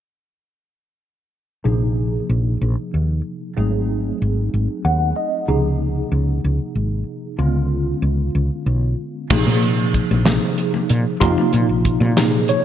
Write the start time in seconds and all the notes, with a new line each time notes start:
1.64 A#1 C3 F3 A#3 D#4 G#4
2.29 A#1
2.61 A#1
2.94 D#2
3.57 G#1 F#3 A3 C4 D#4 G#4
4.22 G#1
4.54 G#1
4.85 D#2 F#5
5.16 D#5
5.48 C#2 C3 F3 A#3 D#4 G#4
6.12 C#2
6.44 C#2
6.75 G#1
7.38 C#2 D3 G#3 B3 C#4 F4
8.02 C#2
8.35 C#2
8.66 B1
9.30 A#1 C3 F3 A#3 D#4 G#4, kick, crash, muted conga, low conga
9.47 A#2, high conga, low conga
9.63 closed hi-hat
9.94 kick, closed hi-hat, low conga
10.11 A#1, high conga, low conga
10.25 C3 F3 A#3 D#4 G#4, snare, closed hi-hat, muted conga, low conga
10.43 low conga
10.58 closed hi-hat
10.74 high conga, low conga
10.89 A#2, closed hi-hat, low conga
11.20 F2 C3 F3 A#3 D#4 F4, kick, closed hi-hat, muted conga, low conga
11.38 high conga, low conga
11.53 A#2, closed hi-hat
11.69 A#1
11.85 kick, closed hi-hat, low conga
12.00 A#2, high conga, low conga
12.17 C3 F3 A#3 D#4 G#4, snare, closed hi-hat, muted conga, low conga
12.34 low conga
12.48 C#5, closed hi-hat